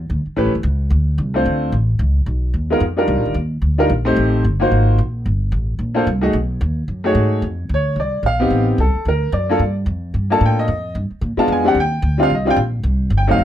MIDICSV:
0, 0, Header, 1, 4, 480
1, 0, Start_track
1, 0, Key_signature, -2, "major"
1, 0, Tempo, 271370
1, 1615, Time_signature, 4, 2, 24, 8
1, 23773, End_track
2, 0, Start_track
2, 0, Title_t, "Upright piano"
2, 0, Program_c, 0, 0
2, 645, Note_on_c, 0, 57, 66
2, 646, Note_on_c, 0, 61, 64
2, 658, Note_on_c, 0, 64, 61
2, 670, Note_on_c, 0, 67, 58
2, 675, Note_on_c, 0, 71, 74
2, 901, Note_off_c, 0, 57, 0
2, 901, Note_off_c, 0, 61, 0
2, 908, Note_off_c, 0, 64, 0
2, 914, Note_off_c, 0, 67, 0
2, 916, Note_off_c, 0, 71, 0
2, 2373, Note_on_c, 0, 57, 68
2, 2386, Note_on_c, 0, 60, 55
2, 2389, Note_on_c, 0, 62, 59
2, 2398, Note_on_c, 0, 65, 56
2, 2408, Note_on_c, 0, 72, 76
2, 3016, Note_off_c, 0, 57, 0
2, 3022, Note_off_c, 0, 60, 0
2, 3024, Note_off_c, 0, 62, 0
2, 3028, Note_off_c, 0, 65, 0
2, 3033, Note_off_c, 0, 72, 0
2, 4782, Note_on_c, 0, 56, 65
2, 4785, Note_on_c, 0, 59, 59
2, 4805, Note_on_c, 0, 65, 65
2, 4806, Note_on_c, 0, 63, 65
2, 4819, Note_on_c, 0, 70, 74
2, 4961, Note_off_c, 0, 56, 0
2, 4962, Note_off_c, 0, 59, 0
2, 4972, Note_off_c, 0, 65, 0
2, 4973, Note_off_c, 0, 63, 0
2, 4980, Note_off_c, 0, 70, 0
2, 5246, Note_on_c, 0, 55, 66
2, 5257, Note_on_c, 0, 63, 60
2, 5260, Note_on_c, 0, 62, 60
2, 5271, Note_on_c, 0, 65, 61
2, 5279, Note_on_c, 0, 70, 74
2, 5893, Note_off_c, 0, 55, 0
2, 5898, Note_off_c, 0, 63, 0
2, 5900, Note_off_c, 0, 62, 0
2, 5906, Note_off_c, 0, 65, 0
2, 5910, Note_off_c, 0, 70, 0
2, 6686, Note_on_c, 0, 55, 72
2, 6694, Note_on_c, 0, 62, 68
2, 6702, Note_on_c, 0, 63, 73
2, 6705, Note_on_c, 0, 65, 67
2, 6719, Note_on_c, 0, 70, 81
2, 6873, Note_off_c, 0, 55, 0
2, 6877, Note_off_c, 0, 62, 0
2, 6881, Note_off_c, 0, 63, 0
2, 6883, Note_off_c, 0, 65, 0
2, 6889, Note_off_c, 0, 70, 0
2, 7164, Note_on_c, 0, 57, 77
2, 7165, Note_on_c, 0, 60, 77
2, 7183, Note_on_c, 0, 63, 75
2, 7186, Note_on_c, 0, 72, 86
2, 7193, Note_on_c, 0, 67, 72
2, 7812, Note_off_c, 0, 57, 0
2, 7813, Note_off_c, 0, 60, 0
2, 7821, Note_off_c, 0, 63, 0
2, 7823, Note_off_c, 0, 72, 0
2, 7826, Note_off_c, 0, 67, 0
2, 8132, Note_on_c, 0, 58, 71
2, 8141, Note_on_c, 0, 63, 66
2, 8154, Note_on_c, 0, 65, 64
2, 8157, Note_on_c, 0, 66, 63
2, 8174, Note_on_c, 0, 72, 77
2, 8776, Note_off_c, 0, 58, 0
2, 8780, Note_off_c, 0, 63, 0
2, 8787, Note_off_c, 0, 65, 0
2, 8788, Note_off_c, 0, 66, 0
2, 8797, Note_off_c, 0, 72, 0
2, 10516, Note_on_c, 0, 58, 74
2, 10517, Note_on_c, 0, 62, 67
2, 10540, Note_on_c, 0, 65, 71
2, 10544, Note_on_c, 0, 72, 77
2, 10546, Note_on_c, 0, 69, 62
2, 10708, Note_off_c, 0, 58, 0
2, 10709, Note_off_c, 0, 62, 0
2, 10720, Note_off_c, 0, 65, 0
2, 10722, Note_off_c, 0, 72, 0
2, 10723, Note_off_c, 0, 69, 0
2, 10992, Note_on_c, 0, 57, 70
2, 10994, Note_on_c, 0, 63, 60
2, 11008, Note_on_c, 0, 66, 65
2, 11013, Note_on_c, 0, 68, 68
2, 11019, Note_on_c, 0, 75, 75
2, 11186, Note_off_c, 0, 57, 0
2, 11187, Note_off_c, 0, 63, 0
2, 11194, Note_off_c, 0, 66, 0
2, 11197, Note_off_c, 0, 68, 0
2, 11200, Note_off_c, 0, 75, 0
2, 12454, Note_on_c, 0, 57, 73
2, 12459, Note_on_c, 0, 63, 64
2, 12475, Note_on_c, 0, 66, 72
2, 12485, Note_on_c, 0, 68, 70
2, 12487, Note_on_c, 0, 73, 75
2, 13097, Note_off_c, 0, 57, 0
2, 13099, Note_off_c, 0, 63, 0
2, 13108, Note_off_c, 0, 66, 0
2, 13113, Note_off_c, 0, 68, 0
2, 13113, Note_off_c, 0, 73, 0
2, 13692, Note_on_c, 0, 73, 76
2, 14104, Note_off_c, 0, 73, 0
2, 14146, Note_on_c, 0, 74, 65
2, 14571, Note_off_c, 0, 74, 0
2, 14614, Note_on_c, 0, 77, 88
2, 14849, Note_on_c, 0, 59, 73
2, 14858, Note_on_c, 0, 60, 67
2, 14871, Note_on_c, 0, 63, 67
2, 14881, Note_on_c, 0, 67, 78
2, 15304, Note_off_c, 0, 77, 0
2, 15494, Note_off_c, 0, 59, 0
2, 15499, Note_off_c, 0, 60, 0
2, 15505, Note_off_c, 0, 63, 0
2, 15510, Note_off_c, 0, 67, 0
2, 15571, Note_on_c, 0, 69, 72
2, 16003, Note_off_c, 0, 69, 0
2, 16068, Note_on_c, 0, 70, 65
2, 16491, Note_off_c, 0, 70, 0
2, 16506, Note_on_c, 0, 74, 70
2, 16794, Note_on_c, 0, 58, 72
2, 16803, Note_on_c, 0, 62, 65
2, 16817, Note_on_c, 0, 65, 69
2, 16824, Note_on_c, 0, 69, 80
2, 16967, Note_off_c, 0, 58, 0
2, 16971, Note_off_c, 0, 62, 0
2, 16978, Note_off_c, 0, 65, 0
2, 16982, Note_off_c, 0, 69, 0
2, 17208, Note_off_c, 0, 74, 0
2, 18225, Note_on_c, 0, 58, 67
2, 18236, Note_on_c, 0, 62, 62
2, 18246, Note_on_c, 0, 65, 66
2, 18254, Note_on_c, 0, 69, 76
2, 18254, Note_on_c, 0, 81, 93
2, 18431, Note_off_c, 0, 81, 0
2, 18494, Note_on_c, 0, 79, 70
2, 18728, Note_off_c, 0, 79, 0
2, 18736, Note_on_c, 0, 75, 82
2, 18861, Note_off_c, 0, 58, 0
2, 18867, Note_off_c, 0, 62, 0
2, 18872, Note_off_c, 0, 65, 0
2, 18876, Note_off_c, 0, 69, 0
2, 19350, Note_off_c, 0, 75, 0
2, 20117, Note_on_c, 0, 56, 75
2, 20131, Note_on_c, 0, 59, 68
2, 20143, Note_on_c, 0, 62, 68
2, 20147, Note_on_c, 0, 65, 80
2, 20149, Note_on_c, 0, 81, 92
2, 20337, Note_off_c, 0, 81, 0
2, 20383, Note_on_c, 0, 80, 73
2, 20578, Note_off_c, 0, 56, 0
2, 20584, Note_off_c, 0, 62, 0
2, 20585, Note_off_c, 0, 59, 0
2, 20592, Note_off_c, 0, 65, 0
2, 20592, Note_on_c, 0, 55, 72
2, 20597, Note_on_c, 0, 60, 70
2, 20611, Note_on_c, 0, 62, 65
2, 20623, Note_on_c, 0, 67, 82
2, 20630, Note_off_c, 0, 80, 0
2, 20655, Note_on_c, 0, 78, 82
2, 20784, Note_off_c, 0, 55, 0
2, 20786, Note_off_c, 0, 60, 0
2, 20793, Note_off_c, 0, 62, 0
2, 20799, Note_off_c, 0, 67, 0
2, 20830, Note_off_c, 0, 78, 0
2, 20874, Note_on_c, 0, 79, 86
2, 21540, Note_on_c, 0, 55, 73
2, 21552, Note_off_c, 0, 79, 0
2, 21559, Note_on_c, 0, 60, 72
2, 21572, Note_on_c, 0, 62, 67
2, 21575, Note_on_c, 0, 65, 86
2, 21631, Note_on_c, 0, 77, 88
2, 21737, Note_off_c, 0, 55, 0
2, 21747, Note_off_c, 0, 60, 0
2, 21753, Note_off_c, 0, 62, 0
2, 21755, Note_off_c, 0, 65, 0
2, 21797, Note_off_c, 0, 77, 0
2, 21838, Note_on_c, 0, 75, 72
2, 22024, Note_on_c, 0, 55, 73
2, 22044, Note_on_c, 0, 60, 73
2, 22055, Note_on_c, 0, 62, 67
2, 22058, Note_on_c, 0, 65, 79
2, 22077, Note_off_c, 0, 75, 0
2, 22118, Note_on_c, 0, 79, 98
2, 22219, Note_off_c, 0, 55, 0
2, 22219, Note_off_c, 0, 79, 0
2, 22229, Note_off_c, 0, 60, 0
2, 22234, Note_off_c, 0, 62, 0
2, 22236, Note_off_c, 0, 65, 0
2, 23304, Note_on_c, 0, 79, 73
2, 23475, Note_on_c, 0, 54, 71
2, 23483, Note_on_c, 0, 57, 70
2, 23496, Note_on_c, 0, 60, 70
2, 23497, Note_on_c, 0, 63, 83
2, 23529, Note_off_c, 0, 79, 0
2, 23547, Note_on_c, 0, 77, 90
2, 23664, Note_off_c, 0, 54, 0
2, 23667, Note_off_c, 0, 57, 0
2, 23674, Note_off_c, 0, 60, 0
2, 23674, Note_off_c, 0, 63, 0
2, 23714, Note_off_c, 0, 77, 0
2, 23773, End_track
3, 0, Start_track
3, 0, Title_t, "Upright bass"
3, 0, Program_c, 1, 32
3, 170, Note_on_c, 1, 38, 83
3, 431, Note_off_c, 1, 38, 0
3, 650, Note_on_c, 1, 33, 73
3, 811, Note_on_c, 1, 31, 53
3, 837, Note_off_c, 1, 33, 0
3, 963, Note_off_c, 1, 31, 0
3, 973, Note_on_c, 1, 28, 67
3, 1107, Note_off_c, 1, 28, 0
3, 1118, Note_on_c, 1, 37, 91
3, 1588, Note_off_c, 1, 37, 0
3, 1598, Note_on_c, 1, 38, 87
3, 2073, Note_off_c, 1, 38, 0
3, 2087, Note_on_c, 1, 36, 89
3, 2558, Note_off_c, 1, 36, 0
3, 2573, Note_on_c, 1, 38, 80
3, 3036, Note_off_c, 1, 38, 0
3, 3047, Note_on_c, 1, 33, 90
3, 3510, Note_off_c, 1, 33, 0
3, 3521, Note_on_c, 1, 37, 88
3, 3995, Note_off_c, 1, 37, 0
3, 4002, Note_on_c, 1, 35, 82
3, 4476, Note_off_c, 1, 35, 0
3, 4486, Note_on_c, 1, 39, 73
3, 4947, Note_off_c, 1, 39, 0
3, 4957, Note_on_c, 1, 41, 89
3, 5430, Note_off_c, 1, 41, 0
3, 5441, Note_on_c, 1, 36, 88
3, 5607, Note_off_c, 1, 36, 0
3, 5607, Note_on_c, 1, 34, 58
3, 5747, Note_off_c, 1, 34, 0
3, 5758, Note_on_c, 1, 31, 61
3, 5904, Note_off_c, 1, 31, 0
3, 5915, Note_on_c, 1, 39, 85
3, 6385, Note_off_c, 1, 39, 0
3, 6396, Note_on_c, 1, 38, 77
3, 6873, Note_off_c, 1, 38, 0
3, 6887, Note_on_c, 1, 34, 91
3, 7354, Note_off_c, 1, 34, 0
3, 7365, Note_on_c, 1, 33, 89
3, 7837, Note_off_c, 1, 33, 0
3, 7862, Note_on_c, 1, 31, 87
3, 8326, Note_off_c, 1, 31, 0
3, 8339, Note_on_c, 1, 32, 83
3, 8805, Note_off_c, 1, 32, 0
3, 8815, Note_on_c, 1, 34, 88
3, 9283, Note_off_c, 1, 34, 0
3, 9296, Note_on_c, 1, 31, 88
3, 9751, Note_off_c, 1, 31, 0
3, 9762, Note_on_c, 1, 33, 87
3, 10224, Note_off_c, 1, 33, 0
3, 10234, Note_on_c, 1, 34, 77
3, 10712, Note_off_c, 1, 34, 0
3, 10732, Note_on_c, 1, 36, 89
3, 11189, Note_off_c, 1, 36, 0
3, 11200, Note_on_c, 1, 35, 86
3, 11675, Note_off_c, 1, 35, 0
3, 11689, Note_on_c, 1, 39, 89
3, 12159, Note_off_c, 1, 39, 0
3, 12167, Note_on_c, 1, 42, 74
3, 12630, Note_off_c, 1, 42, 0
3, 12640, Note_on_c, 1, 44, 88
3, 13115, Note_off_c, 1, 44, 0
3, 13126, Note_on_c, 1, 41, 83
3, 13598, Note_off_c, 1, 41, 0
3, 13607, Note_on_c, 1, 38, 80
3, 14065, Note_off_c, 1, 38, 0
3, 14075, Note_on_c, 1, 36, 70
3, 14544, Note_off_c, 1, 36, 0
3, 14555, Note_on_c, 1, 34, 80
3, 15033, Note_off_c, 1, 34, 0
3, 15041, Note_on_c, 1, 33, 84
3, 15515, Note_off_c, 1, 33, 0
3, 15531, Note_on_c, 1, 36, 85
3, 15794, Note_off_c, 1, 36, 0
3, 16012, Note_on_c, 1, 38, 78
3, 16481, Note_off_c, 1, 38, 0
3, 16491, Note_on_c, 1, 42, 90
3, 16960, Note_off_c, 1, 42, 0
3, 16967, Note_on_c, 1, 43, 82
3, 17429, Note_off_c, 1, 43, 0
3, 17440, Note_on_c, 1, 41, 85
3, 17914, Note_off_c, 1, 41, 0
3, 17932, Note_on_c, 1, 43, 77
3, 18401, Note_off_c, 1, 43, 0
3, 18409, Note_on_c, 1, 45, 90
3, 18878, Note_off_c, 1, 45, 0
3, 18886, Note_on_c, 1, 41, 88
3, 19356, Note_off_c, 1, 41, 0
3, 19366, Note_on_c, 1, 43, 87
3, 19630, Note_off_c, 1, 43, 0
3, 19836, Note_on_c, 1, 46, 80
3, 20101, Note_off_c, 1, 46, 0
3, 20303, Note_on_c, 1, 41, 87
3, 20765, Note_off_c, 1, 41, 0
3, 20776, Note_on_c, 1, 39, 80
3, 21256, Note_off_c, 1, 39, 0
3, 21266, Note_on_c, 1, 38, 91
3, 21745, Note_off_c, 1, 38, 0
3, 21754, Note_on_c, 1, 36, 81
3, 22213, Note_off_c, 1, 36, 0
3, 22224, Note_on_c, 1, 34, 95
3, 22691, Note_off_c, 1, 34, 0
3, 22702, Note_on_c, 1, 36, 89
3, 23166, Note_off_c, 1, 36, 0
3, 23176, Note_on_c, 1, 31, 87
3, 23659, Note_off_c, 1, 31, 0
3, 23673, Note_on_c, 1, 29, 76
3, 23773, Note_off_c, 1, 29, 0
3, 23773, End_track
4, 0, Start_track
4, 0, Title_t, "Muted upright bass strokes"
4, 454, Note_on_c, 9, 29, 39
4, 631, Note_off_c, 9, 29, 0
4, 15825, Note_on_c, 9, 29, 39
4, 16002, Note_off_c, 9, 29, 0
4, 19641, Note_on_c, 9, 29, 39
4, 19818, Note_off_c, 9, 29, 0
4, 20111, Note_on_c, 9, 29, 40
4, 20288, Note_off_c, 9, 29, 0
4, 23773, End_track
0, 0, End_of_file